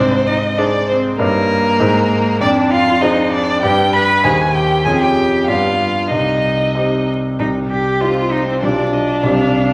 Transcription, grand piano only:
0, 0, Header, 1, 2, 480
1, 0, Start_track
1, 0, Key_signature, -3, "minor"
1, 0, Tempo, 611621
1, 932, Time_signature, 2, 2, 24, 8
1, 3812, Tempo, 634921
1, 5732, Tempo, 611621
1, 7565, End_track
2, 0, Start_track
2, 0, Title_t, "Grand piano"
2, 0, Program_c, 0, 0
2, 0, Note_on_c, 0, 44, 52
2, 103, Control_c, 0, 64, 127
2, 441, Note_off_c, 0, 44, 0
2, 454, Note_on_c, 0, 63, 43
2, 458, Note_on_c, 0, 68, 49
2, 461, Note_on_c, 0, 72, 47
2, 901, Note_off_c, 0, 63, 0
2, 904, Note_off_c, 0, 68, 0
2, 905, Note_off_c, 0, 72, 0
2, 934, Note_on_c, 0, 43, 61
2, 936, Note_on_c, 0, 63, 44
2, 940, Note_on_c, 0, 70, 46
2, 944, Note_on_c, 0, 73, 47
2, 948, Control_c, 0, 64, 0
2, 1073, Control_c, 0, 64, 127
2, 1382, Note_off_c, 0, 63, 0
2, 1384, Note_off_c, 0, 70, 0
2, 1386, Note_off_c, 0, 73, 0
2, 1398, Note_off_c, 0, 43, 0
2, 1409, Note_on_c, 0, 63, 47
2, 1411, Note_on_c, 0, 44, 70
2, 1416, Note_on_c, 0, 68, 46
2, 1421, Note_on_c, 0, 72, 44
2, 1424, Control_c, 0, 64, 0
2, 1530, Control_c, 0, 64, 127
2, 1858, Note_off_c, 0, 63, 0
2, 1862, Note_off_c, 0, 68, 0
2, 1864, Note_off_c, 0, 72, 0
2, 1876, Note_off_c, 0, 44, 0
2, 1889, Note_on_c, 0, 41, 65
2, 1906, Control_c, 0, 64, 0
2, 2035, Control_c, 0, 64, 127
2, 2351, Note_off_c, 0, 41, 0
2, 2364, Note_on_c, 0, 62, 47
2, 2369, Note_on_c, 0, 68, 49
2, 2370, Note_on_c, 0, 72, 52
2, 2814, Note_off_c, 0, 62, 0
2, 2816, Note_off_c, 0, 68, 0
2, 2817, Note_off_c, 0, 72, 0
2, 2847, Note_on_c, 0, 43, 63
2, 2847, Note_on_c, 0, 62, 44
2, 2851, Note_on_c, 0, 67, 46
2, 2857, Note_on_c, 0, 71, 44
2, 2860, Control_c, 0, 64, 0
2, 3001, Control_c, 0, 64, 127
2, 3297, Note_off_c, 0, 62, 0
2, 3299, Note_off_c, 0, 67, 0
2, 3302, Note_off_c, 0, 71, 0
2, 3314, Note_off_c, 0, 43, 0
2, 3326, Note_on_c, 0, 63, 41
2, 3327, Note_on_c, 0, 39, 62
2, 3330, Note_on_c, 0, 67, 39
2, 3336, Note_on_c, 0, 72, 44
2, 3343, Control_c, 0, 64, 0
2, 3450, Control_c, 0, 64, 127
2, 3778, Note_off_c, 0, 63, 0
2, 3780, Note_off_c, 0, 67, 0
2, 3783, Note_off_c, 0, 72, 0
2, 3795, Note_off_c, 0, 39, 0
2, 3808, Note_on_c, 0, 41, 54
2, 3809, Note_on_c, 0, 61, 41
2, 3814, Note_on_c, 0, 65, 41
2, 3818, Note_on_c, 0, 68, 43
2, 3825, Control_c, 0, 64, 0
2, 3947, Control_c, 0, 64, 127
2, 4250, Note_off_c, 0, 61, 0
2, 4253, Note_off_c, 0, 65, 0
2, 4255, Note_off_c, 0, 68, 0
2, 4266, Note_off_c, 0, 41, 0
2, 4283, Note_on_c, 0, 43, 47
2, 4285, Note_on_c, 0, 59, 35
2, 4289, Note_on_c, 0, 62, 38
2, 4291, Note_on_c, 0, 67, 38
2, 4297, Control_c, 0, 64, 0
2, 4438, Control_c, 0, 64, 127
2, 4734, Note_off_c, 0, 59, 0
2, 4736, Note_off_c, 0, 62, 0
2, 4737, Note_off_c, 0, 67, 0
2, 4749, Note_off_c, 0, 43, 0
2, 4758, Note_on_c, 0, 36, 43
2, 4776, Control_c, 0, 64, 0
2, 4905, Control_c, 0, 64, 127
2, 5232, Note_off_c, 0, 36, 0
2, 5239, Note_on_c, 0, 60, 30
2, 5243, Note_on_c, 0, 63, 30
2, 5246, Note_on_c, 0, 67, 33
2, 5697, Note_off_c, 0, 60, 0
2, 5698, Note_off_c, 0, 63, 0
2, 5700, Note_off_c, 0, 67, 0
2, 5728, Note_on_c, 0, 36, 39
2, 5748, Control_c, 0, 64, 0
2, 5897, Control_c, 0, 64, 127
2, 6199, Note_off_c, 0, 36, 0
2, 6213, Note_on_c, 0, 60, 30
2, 6214, Note_on_c, 0, 63, 32
2, 6219, Note_on_c, 0, 67, 34
2, 6664, Note_off_c, 0, 60, 0
2, 6665, Note_off_c, 0, 63, 0
2, 6667, Note_off_c, 0, 67, 0
2, 6697, Note_on_c, 0, 35, 43
2, 6697, Note_on_c, 0, 62, 33
2, 6700, Note_on_c, 0, 65, 31
2, 6706, Note_on_c, 0, 67, 33
2, 6711, Control_c, 0, 64, 0
2, 6849, Control_c, 0, 64, 127
2, 7144, Note_off_c, 0, 62, 0
2, 7145, Note_off_c, 0, 65, 0
2, 7148, Note_off_c, 0, 67, 0
2, 7161, Note_off_c, 0, 35, 0
2, 7171, Note_on_c, 0, 36, 49
2, 7174, Note_on_c, 0, 60, 30
2, 7177, Note_on_c, 0, 63, 32
2, 7182, Note_on_c, 0, 67, 36
2, 7191, Control_c, 0, 64, 0
2, 7316, Control_c, 0, 64, 127
2, 7565, Note_off_c, 0, 36, 0
2, 7565, Note_off_c, 0, 60, 0
2, 7565, Note_off_c, 0, 63, 0
2, 7565, Note_off_c, 0, 67, 0
2, 7565, End_track
0, 0, End_of_file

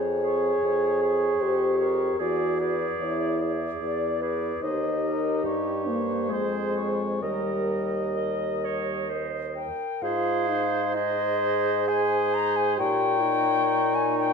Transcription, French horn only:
0, 0, Header, 1, 2, 480
1, 0, Start_track
1, 0, Key_signature, -4, "major"
1, 0, Tempo, 796813
1, 1322, Time_signature, 3, 2, 24, 8
1, 2293, Tempo, 818554
1, 3253, Tempo, 863309
1, 3733, Tempo, 927357
1, 7886, End_track
2, 0, Start_track
2, 0, Title_t, "French horn"
2, 0, Program_c, 0, 60
2, 0, Note_on_c, 0, 68, 78
2, 854, Note_on_c, 0, 67, 75
2, 863, Note_off_c, 0, 68, 0
2, 1323, Note_off_c, 0, 67, 0
2, 1326, Note_on_c, 0, 66, 63
2, 1653, Note_off_c, 0, 66, 0
2, 1808, Note_on_c, 0, 64, 63
2, 2269, Note_off_c, 0, 64, 0
2, 2769, Note_on_c, 0, 63, 70
2, 3488, Note_on_c, 0, 58, 55
2, 3497, Note_off_c, 0, 63, 0
2, 3727, Note_on_c, 0, 56, 51
2, 3735, Note_off_c, 0, 58, 0
2, 4204, Note_off_c, 0, 56, 0
2, 4207, Note_on_c, 0, 55, 51
2, 5159, Note_off_c, 0, 55, 0
2, 5659, Note_on_c, 0, 65, 62
2, 5899, Note_on_c, 0, 63, 52
2, 5907, Note_off_c, 0, 65, 0
2, 6138, Note_on_c, 0, 68, 74
2, 6146, Note_off_c, 0, 63, 0
2, 7076, Note_off_c, 0, 68, 0
2, 7079, Note_on_c, 0, 67, 66
2, 7315, Note_on_c, 0, 63, 63
2, 7323, Note_off_c, 0, 67, 0
2, 7886, Note_off_c, 0, 63, 0
2, 7886, End_track
0, 0, End_of_file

